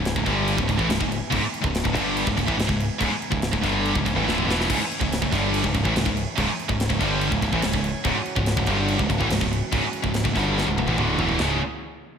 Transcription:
Already playing: C#1 C#2 G#2 E3 B3 G#5
0.05 snare, crash
0.16 C#1 C#2 G#2, kick
0.26 G1 G2 D3 G3, kick, crash
0.48 crash
0.58 C#1 C#2 G#2, kick
0.69 C#1 C#2 G#2, kick, crash
0.79 A1 A2 E3, kick
0.89 C#1 C#2 G#2, snare, crash
1.00 C#1 C#2 G#2, kick
1.12 crash
1.31 C#1 C#2 G#2, kick, crash
1.40 muted distorted electric guitar stroke, muted picked electric bass stroke
1.54 crash
1.62 C#1 C#2 G#2, kick
1.75 snare, crash
1.84 C#1 C#2 G#2, kick
1.93 G1 G2 D3 G3, kick, crash
2.17 crash
2.25 C#1 C#2 G#2, kick
2.37 C#1 C#2 G#2, kick, crash
2.47 A1 A2 E3, kick
2.58 C#1 C#2 G#2, snare, crash
2.67 C#1 C#2 G#2, kick
2.80 crash
3.00 C#1 C#2 G#2, kick, crash
3.11 muted picked electric bass stroke, muted distorted electric guitar stroke
3.22 crash
3.31 C#1 C#2 G#2, kick
3.42 snare, crash
3.53 C#1 C#2 G#2, kick
3.63 G1 G2 D3 G3, kick, snare, crash
3.85 crash
3.95 C#1 C#2 G#2, kick
4.06 C#1 C#2 G#2, kick, crash
4.16 A1 A2 E3
4.24 D1 D2 A2
4.29 A2 D3, snare
4.38 mid tom
4.47 E1 E2 B2 E3, snare
4.61 snare
4.70 C#1 C#2 G#2 E3 C#4 G#5, kick, crash
4.80 muted picked electric bass stroke, muted distorted electric guitar stroke
4.92 crash
5.01 C#1 C#2 G#2, kick
5.12 snare, crash
5.22 C#1 C#2 G#2, kick
5.32 G1 G2 D3 G3, kick, snare, crash
5.54 crash
5.64 C#1 C#2 G#2, kick
5.74 C#1 C#2 G#2, kick, crash
5.85 A1 A2 E3, kick
5.95 C#1 C#2 G#2, snare, crash
6.05 C#1 C#2 G#2, kick
6.17 crash
6.38 C#1 C#2 G#2, kick, crash
6.48 muted distorted electric guitar stroke, muted picked electric bass stroke
6.59 crash
6.69 C#1 C#2 G#2, kick
6.80 snare, crash
6.89 C#1 C#2 G#2, kick
6.99 G1 G2 D3 G3, kick, crash
7.21 crash
7.31 C#1 C#2 G#2, kick
7.42 C#1 C#2 G#2, kick, crash
7.52 A1 A2 E3, kick
7.62 C#1 C#2 G#2, snare, crash
7.74 C#1 C#2 G#2, kick
7.84 crash
8.04 C#1 C#2 G#2 F#4, kick, crash
8.14 muted picked electric bass stroke, muted distorted electric guitar stroke
8.26 crash
8.36 C#1 C#2 G#2, kick
8.46 snare, crash
8.57 C#1 C#2 G#2, kick
8.66 G1 G2 D3 G3, kick, crash
8.88 crash
8.99 C#1 C#2 G#2, kick
9.09 C#1 C#2 G#2, kick, crash
9.18 A1 A2 E3, kick
9.29 C#1 C#2 G#2, snare, crash
9.41 C#1 C#2 G#2, kick
9.53 crash
9.72 C#1 C#2 G#2, kick, crash
9.82 muted picked electric bass stroke, muted distorted electric guitar stroke
9.93 crash
10.03 C#1 C#2 G#2, kick
10.14 snare, crash
10.24 C#1 C#2 G#2, kick
10.35 G1 G2 D3 G3, kick, snare, crash
10.58 snare
10.66 C#1 C#2 G#2
10.75 C#1 C#2 G#2, high tom
10.87 A1 A2 E3, high tom
10.97 D1 D2 A2 D3, mid tom
11.18 E1 E2 B2 E3, floor tom
11.29 floor tom
11.39 C#1 C#2 G#2 C#3 E3 C#4 G#4, snare, floor tom, splash

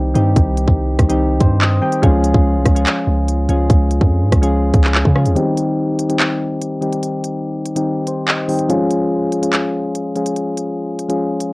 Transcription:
Already playing: C2 D#3 G3 C4 D#4 G4
0.14 G2 D#3 G3 C4 D#4 G4, closed hi-hat
0.36 C2, kick, closed hi-hat
0.57 closed hi-hat
0.68 C2, kick
0.99 C2, kick, cross-stick, closed hi-hat
1.09 D#3 G3 C4 D#4 G4, closed hi-hat
1.40 G2 C5, kick, closed hi-hat
1.61 D#5, clap
1.81 D#3 G3 C4 D#4 G4 G5
1.92 closed hi-hat
2.02 C#2 F3 G#3 C#4 F4 G#4, kick, closed hi-hat
2.24 closed hi-hat
2.34 C#2, kick
2.55 C2
2.66 C#2, kick, cross-stick, closed hi-hat
2.75 F3 G#3 C#4 F4 G#4, closed hi-hat
2.86 clap, closed hi-hat
3.07 C#2
3.28 closed hi-hat
3.49 C#2 F3 G#3 C#4 F4 G#4, closed hi-hat
3.70 C#2, kick, closed hi-hat
3.91 closed hi-hat
4.01 F2, kick
4.22 G#2
4.32 C#2, kick, cross-stick, closed hi-hat
4.42 F3 G#3 C#4 F4 G#4, closed hi-hat
4.74 C#2, kick, closed hi-hat
4.84 clap
4.95 clap
5.05 C#3, kick
5.15 F3 G#3 C#4 F4 G#4, cross-stick
5.26 D#2, closed hi-hat
5.35 D#3 G3 C4 D#4 G4, closed hi-hat
5.57 closed hi-hat
5.99 closed hi-hat
6.08 D#3 G3 C4 D#4 G4, closed hi-hat
6.20 clap, closed hi-hat
6.62 closed hi-hat
6.81 D#3 G3 C4 D#4 G4, closed hi-hat
6.93 closed hi-hat
7.03 closed hi-hat
7.24 closed hi-hat
7.66 closed hi-hat
7.75 D#3 G3 C4 D#4 G4, closed hi-hat
8.07 C5, closed hi-hat
8.28 D#5, clap
8.48 D#3 G3 C4 D#4 G4 G5, open hi-hat
8.59 closed hi-hat
8.69 F3 G#3 C#4 F4 G#4, closed hi-hat
8.91 closed hi-hat
9.32 closed hi-hat
9.42 F3 G#3 C#4 F4 G#4, closed hi-hat
9.53 clap, closed hi-hat
9.95 closed hi-hat
10.15 F3 G#3 C#4 F4 G#4, closed hi-hat
10.26 closed hi-hat
10.36 closed hi-hat
10.57 closed hi-hat
10.99 closed hi-hat
11.08 F3 G#3 C#4 F4 G#4, closed hi-hat
11.40 closed hi-hat

